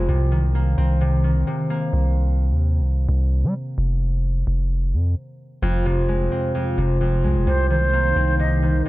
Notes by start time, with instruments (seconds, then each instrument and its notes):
Already playing: harp F2 G#3 C4
0.09 808-style bass C2, harp C3
0.32 harp D#3
0.55 harp A#3
0.78 808-style bass C2, harp C4
1.01 harp C3
1.24 harp D#3
1.47 harp C3
1.70 harp A#3
1.93 808-style bass C2
2.52 808-style bass D#2
2.80 808-style bass C2
3.09 808-style bass C2
3.44 808-style bass G3
3.78 808-style bass F1
4.47 808-style bass F1
4.93 808-style bass F2
5.62 808-style bass F1, harp F2
5.85 harp C3
6.09 harp G#3
6.32 harp C4
6.55 harp F2
6.78 808-style bass F1, harp C3
7.01 harp F2
7.24 808-style bass C2, harp G#3
7.36 808-style bass F1
7.47 808-style bass C2, harp C3, analog synth pad C3 A#3 D#4, flute C5
7.70 harp D#3, flute C5
7.93 harp A#3
8.16 808-style bass C2, harp C4
8.39 harp C3, flute D#5
8.62 harp D#3, flute C5
8.85 harp C3, flute D#5